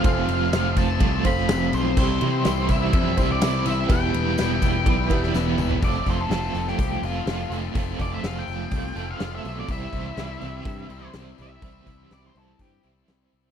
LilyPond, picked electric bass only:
\new Staff \with { instrumentName = "Picked electric bass" } { \clef bass \time 4/4 \key f \lydian \tempo 4 = 124 f,,8 f,,8 f,,8 f,,8 c,8 f,,8 f,,8 b,,8 | c,8 c8 c,8 c,8 f,8 c,8 c,4 | e,,8 e,,8 e,,8 e,,8 b,,8 e,,8 e,,8 e,,8 | f,,8 f,,8 f,,8 f,,8 c,8 f,,8 f,,8 f,,8 |
f,,8 f,,8 f,,8 f,,8 c,8 f,,8 f,,8 b,,8 | c,8 c,8 c,8 c,8 g,8 c,8 c,8 c,8 | c,8 c,8 c,8 c,8 g,8 c,8 c,8 c,8 | }